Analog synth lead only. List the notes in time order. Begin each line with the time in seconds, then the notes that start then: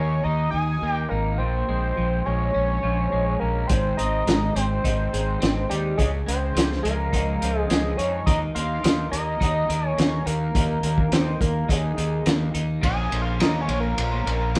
Already playing: C#5 G#5
0.24 D#5 A#5
0.51 G#5 D#6
0.91 G5 D6
1.09 A#4 F5
1.38 C5 G5
2.26 C#5 G#5
3.39 A#4 F5
3.67 C5 G5
3.97 D#5 A#5
4.54 C5 G5
5.70 G4 D5
5.97 G#4 D#5
6.28 C5 G5
6.83 A#4 F5
7.59 G#4 D#5
7.97 C#5 G#5
8.26 D#5 A#5
8.55 F5 C6
9.11 D#5 A#5
9.87 C#5 G#5
10.26 A#4 F5
11.13 C5 G5
11.41 A#4 F5
11.70 G#4 D#5
12.85 G#5 D#6
13.22 F5 C6
13.41 D#5 A#5
13.61 C#5 G#5
13.80 A#4 F5
13.99 A#4 F5